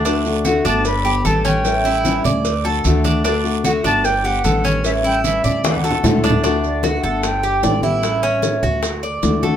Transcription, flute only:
X:1
M:4/4
L:1/8
Q:1/4=150
K:D
V:1 name="Flute"
z2 f a b2 a g- | g3 z4 z | z2 f a g f2 z | e g e2 f3 z |
z d f2 g2 z2 | z8 |]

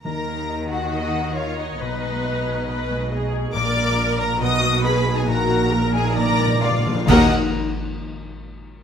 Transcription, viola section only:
X:1
M:4/4
L:1/8
Q:1/4=136
K:Ebm
V:1 name="Viola section"
z4 e2 d2 | c4 c2 A2 | B4 ^F2 A2 | G2 B2 =d2 d z |
[B,B] z6 z |]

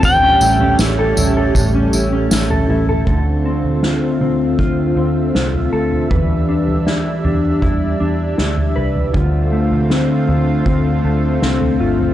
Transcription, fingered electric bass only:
X:1
M:4/4
L:1/16
Q:1/4=79
K:Ddor
V:1 name="Fingered electric bass" clef=bass
A,,,2 A,,,2 A,,,2 A,,,2 A,,,2 A,,,2 A,,,2 A,,,2 | D,,4- D,, z D,,2 D,,2 D,,2 C,,2 D,,2 | E,,4- E,, z E,,2 E,,2 E,,2 D,,2 C,,2 | D,,4- D,, z D,,2 D,,2 D,,2 C,,2 G,,,2 |]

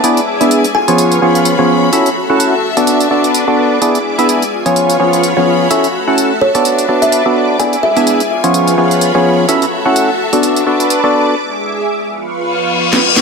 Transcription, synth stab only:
X:1
M:4/4
L:1/16
Q:"Swing 16ths" 1/4=127
K:F#m
V:1 name="Synth stab"
[B,DEGd] z2 [B,DEGe]2 z2 [^E,B,C^EGc]3 [E,B,CEGc]3 [E,B,CEGc]3 | [CEFAe] z2 [CEFAf]2 z2 [B,DFAd]3 [B,DFAd]3 [B,DFAd]3 | [B,DEGd] z2 [B,DEGe]2 z2 [^E,B,C^EGc]3 [E,B,CEGc]3 [E,B,CEGc]3 | [CEFAe] z2 [CEFAf]2 z2 [B,DFAd]3 [B,DFAd]3 [B,DFAd]3 |
[B,DEGd] z2 [B,DEGe]2 z2 [^E,B,C^EGc]3 [E,B,CEGc]3 [E,B,CEGc]3 | [CEFAe] z2 [CEFAf]2 z2 [B,DFAd]3 [B,DFAd]3 [B,DFAd]3 | z16 |]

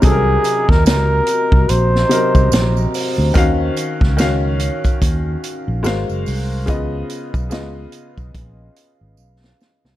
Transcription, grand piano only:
X:1
M:4/4
L:1/8
Q:"Swing 16ths" 1/4=72
K:Ebm
V:1 name="Grand piano"
[=C,G,E=AB]3 z2 [C,G,EB]2 z | [E,DGf]2 [E,DGf]3 z [A,GB=cf]2 | [D,CFe]2 [D,CFe]3 z3 |]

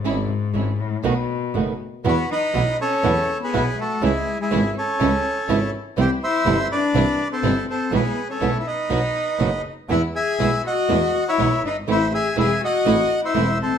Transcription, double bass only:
X:1
M:4/4
L:1/8
Q:1/4=122
K:Bmix
V:1 name="Double bass" clef=bass
G,,, z G,,, z B,,, z F,,, z | [K:E] E,, z B,,, z E,, z B,,, z | C,, z G,,, z C,, z G,,, z | =C,, z =G,,, z C,, z G,,, z |
B,,, z B,,, z B,,, z F,,, z | E,, z B,,, z E,, z B,,, =G,,, | A,,, z E,,, z A,,, z E,,, A,,, |]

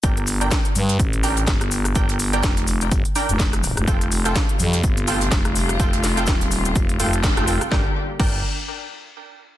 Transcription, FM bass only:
X:1
M:4/4
L:1/16
Q:"Swing 16ths" 1/4=125
K:Gm
V:1 name="FM bass" clef=bass
G,,,4 z2 G,,2 A,,,4 G,,,4 | G,,,4 F,,,4 G,,, z2 F,,,4 F,,, | F,,,4 z2 F,,2 G,,,4 F,,,4 | F,,,4 E,,,4 F,,,2 F,,,3 F,,,2 z |
G,,, z3 G,,,2 z8 z2 |]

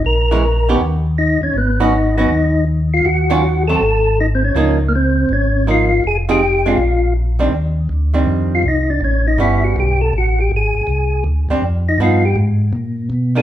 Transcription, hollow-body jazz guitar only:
X:1
M:4/4
L:1/8
Q:"Swing" 1/4=161
K:Ablyd
V:1 name="Hollow-body jazz guitar"
z [_F,A,_D] z [E,_CDG] z4 | z [_G,_C_D] z [G,CD] z4 | z [E,_G,_DF] z [G,=A,C] z4 | [F,B,E] z4 z [F,B,E] z |
z [F,CEA] z [A,CD] z3 [E,G,CD] | z3 [E,G,CD]3 z2 | z2 [G,=B,^C]3 z3 | z4 z [G,CD] z2 |
[F,=B,^D] z6 [^D,^A,=D] |]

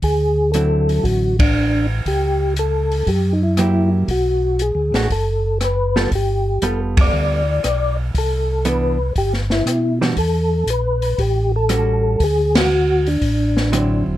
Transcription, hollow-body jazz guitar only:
X:1
M:4/4
L:1/8
Q:"Swing" 1/4=118
K:Dmix
V:1 name="Hollow-body jazz guitar"
z2 [D,F,CE]3 z3 | z6 [F,^A,EG]2 | z3 [A,DF] z3 [G,B,=FA] | z2 [G,B,=FA]3 z3 |
z2 [E,B,D] z4 [E,G,DF] | z6 [G,^CF]2 | z6 [D,F,CE]2 |]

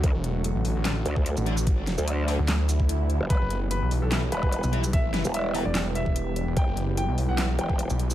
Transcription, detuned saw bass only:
X:1
M:4/4
L:1/16
Q:1/4=147
K:Em
V:1 name="Detuned saw bass" clef=bass
z E,,,4 A,,, A,,, A,,,3 z3 A,,,3- | A,,,3 z4 D,,8 z | z F,,,4 B,,, B,,, B,,,3 z3 B,,,3- | B,,,3 z4 E,,,4 E,,,4 E,,, |
z F,,,4 B,,, B,,, B,,,3 z3 B,,,3 |]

